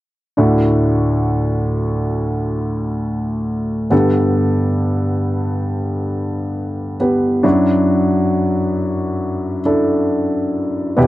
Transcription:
0.37 D2 A2 D4 E4 F#4
3.90 G2 D3 B3 G4 A4
7.00 B3 G4 B4
7.43 F#2 F#3 D4 E4 F#4
9.65 D4 E4 A4
10.97 E2 B2 B3 E4 G4

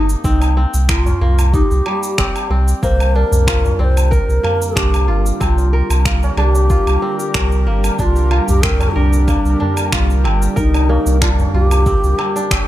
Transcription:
Already playing: G1 A#3 C4 D#4 A#4
0.09 cabasa
0.23 C2 C4 D#4, kick, cabasa
0.40 tabla tin, cabasa, low woodblock
0.57 C4
0.74 C2, cabasa
0.88 F4 A#4, finger snap, kick, cabasa, low woodblock
1.06 tabla na, tabla ge, cabasa
1.21 C2 A#3
1.38 tabla tin, cabasa, low woodblock
1.53 D#4 G4, kick, cabasa
1.71 C2, cabasa
1.86 G3, tabla tin, low woodblock
2.03 cabasa
2.18 G1 C4, finger snap, kick, tabla na, cabasa
2.36 cabasa, low woodblock
2.50 C2 C4, tabla na, tabla tin
2.68 cabasa
2.81 C2 D3 G3 A#3 G4 A#4 C5, kick, cabasa
3.00 cabasa, low woodblock
3.15 D4 A#4
3.32 C2, tabla ge, cabasa
3.47 F4, finger snap, kick, cabasa, low woodblock
3.64 tabla na, tabla ge, cabasa
3.79 C2 C4 D5
3.84 C5
3.97 cabasa, low woodblock
4.11 A#4, kick, tabla tin, cabasa
4.28 C2, cabasa
4.43 A#3, tabla ge, low woodblock
4.62 cabasa
4.76 C2 D4 G4, finger snap, kick, cabasa
4.94 cabasa, low woodblock
5.08 G1 F4
5.26 cabasa
5.40 C2 C4 G4, kick, cabasa, low woodblock
5.45 F4
5.58 tabla tin, cabasa
5.73 A#4
5.90 C2, cabasa, low woodblock
6.05 A#3, finger snap, kick, cabasa
6.23 tabla na, cabasa
6.37 C2 D4 G#4, low woodblock
6.42 G4
6.55 tabla tin, cabasa
6.70 F4, kick, cabasa
6.87 C2, cabasa, low woodblock
7.02 C4, tabla tin
7.20 cabasa
7.34 C2 A#4, finger snap, kick, tabla na, cabasa, low woodblock
7.52 cabasa
7.66 G1 A#3, tabla tin
7.84 cabasa, low woodblock
7.99 C2 D4 F4 G4, kick, cabasa
8.16 cabasa
8.31 F4, low woodblock
8.48 C2 G4, tabla ge, cabasa
8.63 C4 A#4, finger snap, kick, cabasa
8.80 tabla na, tabla ge, cabasa, low woodblock
8.96 C2 D4 A#4
9.13 cabasa
9.28 A#3, kick, tabla tin, cabasa, low woodblock
9.45 C2, cabasa
9.60 D4, tabla ge
9.77 cabasa, low woodblock
9.92 C2 F4, finger snap, kick, cabasa
10.10 cabasa
10.24 G1 C4, low woodblock
10.42 cabasa
10.56 C2 D#4 A#4, kick, cabasa
10.74 tabla tin, cabasa, low woodblock
10.89 A#3, tabla na
11.06 C2, tabla na, cabasa
11.22 D4 F4, finger snap, kick, cabasa, low woodblock
11.39 tabla na, tabla ge, cabasa
11.54 C2 F4 G4
11.71 tabla tin, cabasa, low woodblock
11.86 C4, kick, cabasa
12.03 C2, cabasa
12.18 C4, tabla tin, low woodblock
12.36 D4, cabasa
12.51 G1 C4, finger snap, kick, tabla na, cabasa

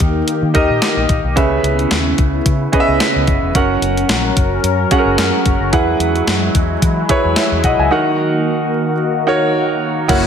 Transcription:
Already playing: D#3 A#3 D#4 G4 A#4 G5
0.00 D#2, kick, closed hi-hat
0.28 closed hi-hat
0.42 D#3
0.54 D#2 D#4 G4 A#4 D#5, kick, closed hi-hat
0.70 A#2
0.82 snare, closed hi-hat
0.97 A#1
1.09 A#1, kick, closed hi-hat
1.24 B1
1.36 C#2 C#3 B3 C#4 E4 G#4 B4 E5, kick, closed hi-hat
1.63 C#2, closed hi-hat
1.79 closed hi-hat
1.91 D#2, snare, closed hi-hat
2.18 C#2, kick, closed hi-hat
2.46 C#3, kick, closed hi-hat
2.72 C#4 G#4 B4 D#5, kick, closed hi-hat
2.80 E5
2.88 C#2
3.00 snare, closed hi-hat
3.16 C#2
3.27 F#1, kick, closed hi-hat
3.42 E1
3.55 F#1 F#3 C#4 F#4 A#4 F#5, kick, closed hi-hat
3.81 F#1, closed hi-hat
3.97 closed hi-hat
4.09 A#1, snare, closed hi-hat
4.37 F#1, kick, closed hi-hat
4.63 F#2, closed hi-hat
4.91 C#4 F#4 G#4 F#5, kick, closed hi-hat
4.98 A#4
5.05 F#1
5.18 F#2, snare, closed hi-hat
5.46 F#1, kick, closed hi-hat
5.60 F#1
5.72 E2 E3 F#3 G#3 E4 G#4 B4 F#5, kick, closed hi-hat
5.99 E2, closed hi-hat
6.16 closed hi-hat
6.27 F#2, snare, closed hi-hat
6.55 E2, kick, closed hi-hat
6.82 E3, kick, closed hi-hat
7.09 E4 G#4 B4 C#5, kick, closed hi-hat
7.25 E2
7.36 C#5 E5, snare, closed hi-hat
7.52 E2
7.64 B1 D#5 F#5, kick, closed hi-hat
7.79 C#2 E5 G#5
7.91 D#3 A#3 D#4 F#4 A#4 F#5
9.27 D#4 F#4 A#4 C#5
10.08 F#1 C#3 F#3 A#3 E4 F#4 A#4 C#5 F#5, kick, closed hi-hat, crash

